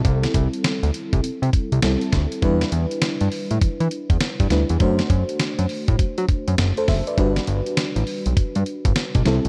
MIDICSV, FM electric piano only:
0, 0, Header, 1, 2, 480
1, 0, Start_track
1, 0, Tempo, 594059
1, 40, Time_signature, 4, 2, 24, 8
1, 7665, End_track
2, 0, Start_track
2, 0, Title_t, "FM electric piano"
2, 0, Program_c, 0, 5
2, 0, Control_c, 0, 64, 127
2, 0, Note_on_c, 0, 55, 72
2, 0, Note_on_c, 0, 60, 67
2, 0, Note_on_c, 0, 64, 71
2, 0, Note_on_c, 0, 69, 75
2, 1445, Note_off_c, 0, 55, 0
2, 1449, Note_off_c, 0, 60, 0
2, 1451, Note_off_c, 0, 64, 0
2, 1454, Note_off_c, 0, 69, 0
2, 1479, Note_on_c, 0, 55, 58
2, 1482, Note_on_c, 0, 60, 54
2, 1486, Note_on_c, 0, 64, 55
2, 1489, Note_on_c, 0, 69, 66
2, 1945, Note_off_c, 0, 55, 0
2, 1954, Note_on_c, 0, 55, 75
2, 1957, Note_off_c, 0, 64, 0
2, 1961, Note_off_c, 0, 60, 0
2, 1961, Note_on_c, 0, 62, 66
2, 1964, Note_off_c, 0, 69, 0
2, 1966, Note_on_c, 0, 64, 67
2, 1970, Control_c, 0, 64, 0
2, 1974, Note_on_c, 0, 71, 79
2, 2095, Control_c, 0, 64, 127
2, 3605, Note_off_c, 0, 55, 0
2, 3608, Note_off_c, 0, 62, 0
2, 3611, Note_off_c, 0, 64, 0
2, 3615, Note_off_c, 0, 71, 0
2, 3639, Note_on_c, 0, 55, 53
2, 3642, Note_on_c, 0, 62, 51
2, 3644, Note_on_c, 0, 64, 51
2, 3649, Note_on_c, 0, 71, 59
2, 3873, Note_off_c, 0, 62, 0
2, 3875, Note_on_c, 0, 57, 74
2, 3879, Note_off_c, 0, 55, 0
2, 3882, Note_off_c, 0, 64, 0
2, 3883, Note_on_c, 0, 62, 70
2, 3884, Note_off_c, 0, 71, 0
2, 3888, Note_on_c, 0, 66, 67
2, 3890, Control_c, 0, 64, 0
2, 3895, Note_on_c, 0, 72, 81
2, 4035, Control_c, 0, 64, 127
2, 5063, Note_off_c, 0, 72, 0
2, 5476, Note_on_c, 0, 72, 72
2, 5479, Note_on_c, 0, 69, 64
2, 5557, Note_off_c, 0, 72, 0
2, 5558, Note_off_c, 0, 69, 0
2, 5564, Note_on_c, 0, 76, 68
2, 5567, Note_on_c, 0, 72, 62
2, 5708, Note_off_c, 0, 76, 0
2, 5709, Note_off_c, 0, 72, 0
2, 5715, Note_on_c, 0, 74, 68
2, 5721, Note_on_c, 0, 71, 56
2, 5765, Note_off_c, 0, 57, 0
2, 5769, Note_off_c, 0, 62, 0
2, 5772, Note_off_c, 0, 66, 0
2, 5796, Note_on_c, 0, 55, 69
2, 5802, Note_on_c, 0, 62, 70
2, 5805, Note_off_c, 0, 71, 0
2, 5808, Control_c, 0, 64, 0
2, 5809, Note_on_c, 0, 66, 66
2, 5815, Note_on_c, 0, 71, 83
2, 5942, Note_off_c, 0, 74, 0
2, 5969, Control_c, 0, 64, 127
2, 7446, Note_off_c, 0, 55, 0
2, 7449, Note_off_c, 0, 62, 0
2, 7452, Note_off_c, 0, 66, 0
2, 7455, Note_off_c, 0, 71, 0
2, 7475, Note_on_c, 0, 55, 75
2, 7481, Note_on_c, 0, 60, 68
2, 7489, Control_c, 0, 64, 0
2, 7489, Note_on_c, 0, 64, 67
2, 7495, Note_on_c, 0, 69, 82
2, 7636, Control_c, 0, 64, 127
2, 7665, Note_off_c, 0, 55, 0
2, 7665, Note_off_c, 0, 60, 0
2, 7665, Note_off_c, 0, 64, 0
2, 7665, Note_off_c, 0, 69, 0
2, 7665, End_track
0, 0, End_of_file